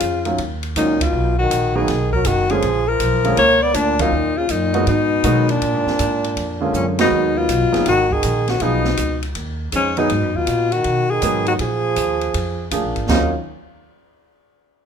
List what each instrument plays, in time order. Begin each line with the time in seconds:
Already playing: trombone C#3, alto saxophone F4
0.00 upright bass F2, kick, hi-hat pedal, ride
0.25 grand piano D#3 F#3 A#3 C#4 F4, ride
0.38 upright bass D#2, kick, ride
0.63 ride
0.76 upright bass C#2, trombone A#2, grand piano D#3 F#3 A#3 C#4 D#4, alto saxophone D#4, kick, hi-hat pedal, ride
1.01 trombone B2, alto saxophone F4, kick, ride
1.13 upright bass B1
1.39 trombone D#3, alto saxophone F#4
1.51 upright bass A#1, kick, hi-hat pedal, ride
1.75 grand piano D#3 F#3 A#3 B3 F#4, trombone D#3, alto saxophone G#4
1.88 upright bass B1, kick, snare, ride
2.12 trombone F#3, alto saxophone A#4, kick
2.25 upright bass F#1, trombone D#3, alto saxophone F#4, kick, hi-hat pedal, ride
2.49 grand piano D3 G#3 A#3 C#4 F4, trombone F3, alto saxophone G#4, ride
2.62 upright bass A#1, kick, ride
2.88 trombone F3, alto saxophone A#4
3.00 upright bass B1, kick, hi-hat pedal, ride
3.24 grand piano D3 G#3 A#3 C#4 F4, ride
3.37 upright bass C#2, trombone A#3, alto saxophone C#5, kick, ride
3.62 trombone B3, alto saxophone D5
3.74 upright bass D2, trombone A#2, alto saxophone D4, kick, hi-hat pedal, ride
3.99 trombone A#2, grand piano D#3 F#3 A#3 C#4 F4, alto saxophone D#4, kick, ride
4.12 upright bass D#2
4.37 trombone C#3, alto saxophone F4
4.49 upright bass F#2, trombone A#2, alto saxophone D#4, kick, hi-hat pedal, ride
4.74 grand piano D#3 F#3 G#3 B3 F#4, ride
4.87 upright bass G#2, trombone B2, alto saxophone D#4, ride
5.24 upright bass B2, grand piano D#3 F#3 G#3 B3 F#4, kick, hi-hat pedal, ride
5.49 trombone A#2, alto saxophone D4, ride
5.62 upright bass A#2, kick, ride
5.74 upright bass G#2
5.86 upright bass F2, snare
5.99 upright bass G#2, kick, hi-hat pedal, ride
6.24 ride
6.37 upright bass F2, kick, ride
6.61 grand piano D3 G#3 A#3 C#4 F4
6.73 upright bass F#2, trombone A#2, alto saxophone C#4, hi-hat pedal
6.98 trombone B2, grand piano D#3 F#3 G#3 B3 F#4, alto saxophone D#4, snare, ride
7.11 upright bass D#2
7.36 trombone B2, alto saxophone F4
7.49 upright bass B1, kick, hi-hat pedal, ride
7.61 upright bass G#1
7.72 upright bass F#1, grand piano F#3 B3 D#4 G#4, snare, ride
7.86 upright bass G#1, trombone D#3, alto saxophone F#4, kick, snare, ride
8.11 trombone D#3, alto saxophone G#4, kick
8.23 upright bass A#1, kick, hi-hat pedal, ride
8.48 trombone D#3, alto saxophone F#4, snare, ride
8.60 upright bass B1, trombone B2, grand piano F3 B3 D#4 G#4, alto saxophone D#4, kick, ride
8.85 snare
8.97 upright bass C#2, kick, hi-hat pedal, ride
9.23 ride
9.35 upright bass D#2, kick, ride
9.72 upright bass F2, trombone G#2, alto saxophone C#4, kick, hi-hat pedal, ride
9.97 trombone B2, grand piano F#3 B3 D#4 G#4, alto saxophone D#4, ride
10.10 upright bass G#2, kick, ride
10.23 upright bass F#2
10.35 upright bass D#2, trombone B2, alto saxophone F4
10.47 upright bass A#2, kick, hi-hat pedal, ride
10.72 trombone D#3, alto saxophone F#4, ride
10.84 upright bass B2, kick, ride
11.10 trombone D#3, alto saxophone G#4
11.22 upright bass G#2, grand piano F#3 B3 D#4 G#4, kick, hi-hat pedal, ride
11.46 trombone D#3, alto saxophone F#4, ride
11.59 upright bass A#2, trombone F3, alto saxophone G#4, kick, ride
11.96 upright bass D#2, kick, hi-hat pedal, ride
12.21 ride
12.34 upright bass F2, kick, ride
12.71 upright bass D2, grand piano F3 A#3 D4 G#4, kick, hi-hat pedal, ride
12.83 upright bass A#1
12.95 upright bass G#1, ride
13.08 upright bass D#2, grand piano D#3 F#3 C#4 F4, trombone A#3, alto saxophone D#4, kick, snare, splash